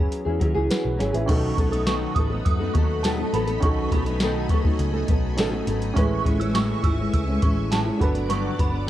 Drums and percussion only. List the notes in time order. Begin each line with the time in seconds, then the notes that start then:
0.12 closed hi-hat
0.41 kick, closed hi-hat
0.71 snare, closed hi-hat, tambourine
1.00 snare, closed hi-hat
1.14 closed hi-hat
1.29 kick, closed hi-hat, crash
1.58 kick, closed hi-hat
1.73 closed hi-hat
1.87 snare, closed hi-hat, tambourine
2.16 kick, closed hi-hat
2.46 kick, closed hi-hat
2.75 kick, closed hi-hat
3.04 snare, closed hi-hat, tambourine
3.34 closed hi-hat
3.48 closed hi-hat
3.63 kick, closed hi-hat
3.92 kick, closed hi-hat
4.06 closed hi-hat
4.20 snare, closed hi-hat, tambourine
4.49 kick, closed hi-hat
4.65 kick
4.79 closed hi-hat
5.08 kick, closed hi-hat
5.38 snare, closed hi-hat, tambourine
5.67 closed hi-hat
5.82 closed hi-hat
5.97 kick, closed hi-hat
6.26 kick, closed hi-hat
6.41 closed hi-hat
6.55 snare, closed hi-hat, tambourine
6.84 kick, closed hi-hat
7.14 kick, closed hi-hat
7.42 kick, closed hi-hat
7.72 snare, closed hi-hat, tambourine
8.01 kick, closed hi-hat
8.15 closed hi-hat
8.30 closed hi-hat
8.59 kick, closed hi-hat